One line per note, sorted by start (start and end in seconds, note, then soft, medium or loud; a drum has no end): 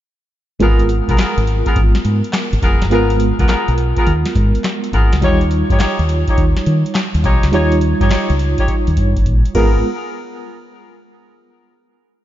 0.60 1.00 G#1 medium
0.60 2.87 G#3 medium
0.60 0.81 B3 medium
0.60 2.87 B3 medium
0.60 0.81 F4 medium
0.60 2.88 F4 medium
0.60 0.82 G#4 medium
0.60 0.82 A#4 loud
0.60 2.88 A#4 medium
0.60 kick loud
0.60 closed hi-hat medium
0.79 closed hi-hat medium
0.89 closed hi-hat medium
1.08 1.17 B1 medium
1.08 1.17 B3 medium
1.08 1.17 F4 medium
1.08 1.17 G#4 medium
1.08 1.17 A#4 medium
1.08 kick medium
1.08 closed hi-hat medium
1.18 1.39 B3 medium
1.18 1.39 F4 medium
1.18 1.39 G#4 medium
1.18 1.39 A#4 medium
1.18 muted fingered electric bass stroke soft
1.18 snare loud
1.18 clap medium
1.18 closed hi-hat medium
1.37 1.61 G#1 medium
1.37 closed hi-hat medium
1.47 closed hi-hat medium
1.66 1.79 B3 medium
1.66 1.79 F4 medium
1.66 1.79 G#4 medium
1.66 1.80 A#4 medium
1.66 kick medium
1.66 closed hi-hat medium
1.76 1.92 G#1 loud
1.76 kick medium
1.76 closed hi-hat medium
1.95 snare medium
1.95 closed hi-hat medium
2.05 2.21 G#2 medium
2.05 closed hi-hat medium
2.24 closed hi-hat medium
2.33 snare loud
2.33 clap medium
2.33 closed hi-hat medium
2.53 2.61 G#1 medium
2.53 closed hi-hat medium
2.62 2.78 F1 medium
2.62 2.83 B3 medium
2.62 2.83 F4 medium
2.62 2.83 G#4 medium
2.62 2.83 A#4 medium
2.62 kick medium
2.62 closed hi-hat medium
2.82 2.91 F#1 medium
2.82 snare medium
2.82 closed hi-hat soft
2.90 3.31 G#1 loud
2.90 5.18 G#3 medium
2.90 3.12 B3 medium
2.90 5.18 B3 medium
2.90 3.12 F4 medium
2.90 5.18 F4 medium
2.90 3.12 G#4 medium
2.90 3.12 A#4 medium
2.90 5.19 A#4 medium
2.90 closed hi-hat medium
3.10 closed hi-hat medium
3.20 closed hi-hat medium
3.39 3.47 C#2 medium
3.39 3.47 B3 medium
3.39 3.48 F4 medium
3.39 3.48 G#4 medium
3.39 3.48 A#4 medium
3.39 kick medium
3.39 closed hi-hat medium
3.49 3.70 B3 medium
3.49 3.70 F4 medium
3.49 3.70 G#4 medium
3.49 3.70 A#4 medium
3.49 snare loud
3.49 clap medium
3.49 closed hi-hat medium
3.68 3.92 B1 medium
3.68 closed hi-hat soft
3.78 closed hi-hat medium
3.96 4.10 B3 medium
3.96 4.10 F4 medium
3.96 4.10 G#4 medium
3.96 4.10 A#4 medium
3.96 kick medium
3.96 closed hi-hat medium
4.07 4.23 D#2 loud
4.07 closed hi-hat medium
4.26 snare medium
4.26 closed hi-hat medium
4.35 4.51 G#2 medium
4.35 kick medium
4.35 closed hi-hat medium
4.55 closed hi-hat medium
4.64 snare loud
4.64 clap medium
4.64 closed hi-hat medium
4.84 closed hi-hat medium
4.93 5.09 G#1 medium
4.93 5.14 B3 medium
4.93 5.14 F4 medium
4.93 5.14 G#4 medium
4.93 5.14 A#4 medium
4.93 kick medium
4.93 closed hi-hat medium
5.12 5.20 C#2 medium
5.12 snare medium
5.12 closed hi-hat medium
5.21 5.62 D#2 loud
5.21 7.49 G3 medium
5.21 5.43 D#4 medium
5.21 7.49 D#4 medium
5.21 5.43 F4 medium
5.21 7.49 F4 medium
5.21 5.43 G4 medium
5.21 5.43 C#5 loud
5.21 7.50 C#5 medium
5.21 kick loud
5.21 closed hi-hat medium
5.41 closed hi-hat medium
5.51 closed hi-hat medium
5.70 5.78 G2 medium
5.70 5.78 D#4 medium
5.70 5.79 F4 medium
5.70 5.79 G4 medium
5.70 5.79 C#5 medium
5.70 kick medium
5.70 closed hi-hat medium
5.80 6.01 D#4 medium
5.80 6.01 F4 medium
5.80 6.01 G4 medium
5.80 6.01 C#5 medium
5.80 muted fingered electric bass stroke soft
5.80 snare loud
5.80 clap medium
5.80 closed hi-hat medium
5.99 6.23 D#2 medium
5.99 closed hi-hat soft
6.09 closed hi-hat medium
6.28 6.41 D#4 medium
6.28 6.41 F4 medium
6.28 6.41 G4 medium
6.28 6.41 C#5 medium
6.28 kick medium
6.28 closed hi-hat medium
6.38 6.53 D#2 medium
6.38 kick medium
6.38 closed hi-hat medium
6.57 snare medium
6.57 closed hi-hat medium
6.66 6.82 D#3 medium
6.66 closed hi-hat medium
6.86 closed hi-hat medium
6.95 snare loud
6.95 clap medium
6.95 closed hi-hat medium
7.15 7.22 D#2 medium
7.15 closed hi-hat medium
7.24 7.40 B1 medium
7.24 7.45 D#4 medium
7.24 7.45 F4 medium
7.24 7.45 G4 medium
7.24 7.45 C#5 medium
7.24 kick medium
7.24 closed hi-hat medium
7.43 7.51 C#2 medium
7.43 snare medium
7.43 closed hi-hat medium
7.52 7.93 D#2 loud
7.52 9.50 G3 medium
7.52 7.74 D#4 medium
7.52 9.51 D#4 medium
7.52 7.74 F4 medium
7.52 9.51 F4 medium
7.52 7.74 G4 medium
7.52 7.74 C#5 loud
7.52 9.52 C#5 medium
7.52 closed hi-hat medium
7.72 closed hi-hat medium
7.81 closed hi-hat medium
8.01 8.09 G2 medium
8.01 8.09 D#4 medium
8.01 8.10 F4 medium
8.01 8.10 G4 medium
8.01 8.10 C#5 medium
8.01 kick loud
8.01 closed hi-hat medium
8.10 8.31 D#4 medium
8.10 8.32 F4 medium
8.10 8.32 G4 medium
8.10 8.32 C#5 medium
8.10 muted fingered electric bass stroke soft
8.10 snare loud
8.10 clap medium
8.10 closed hi-hat medium
8.30 8.54 C#2 medium
8.30 closed hi-hat soft
8.39 closed hi-hat medium
8.58 8.72 D#4 medium
8.58 8.72 F4 medium
8.58 8.72 G4 medium
8.58 8.72 C#5 medium
8.58 kick medium
8.58 closed hi-hat medium
8.68 kick medium
8.68 closed hi-hat medium
8.87 8.96 D#2 medium
8.87 closed hi-hat medium
8.97 9.13 G2 medium
8.97 kick medium
8.97 closed hi-hat medium
9.16 9.24 G1 medium
9.16 kick medium
9.16 closed hi-hat medium
9.26 9.42 A#1 medium
9.26 kick medium
9.26 closed hi-hat medium
9.45 closed hi-hat medium
9.54 9.82 G#1 medium
9.54 9.82 G#3 medium
9.54 9.78 B3 medium
9.54 9.82 B3 medium
9.54 9.78 F4 medium
9.54 9.82 F4 medium
9.54 9.78 G#4 medium
9.54 9.82 A#4 medium
9.54 9.78 A#4 loud
9.54 kick loud
9.54 crash medium